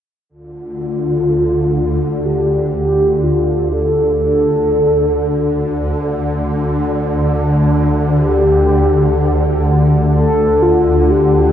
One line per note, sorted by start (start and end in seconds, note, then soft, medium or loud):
0.29 11.52 D2 medium
0.29 11.52 D3 medium
0.29 2.27 F4 medium
2.25 2.73 G4 medium
2.74 3.25 G4 medium
3.23 3.74 F4 medium
3.73 4.21 A4 loud
4.22 6.14 A4 loud
8.15 9.59 G4 loud
10.14 10.64 A4 loud
10.62 11.12 F4 medium
11.11 11.52 G4 medium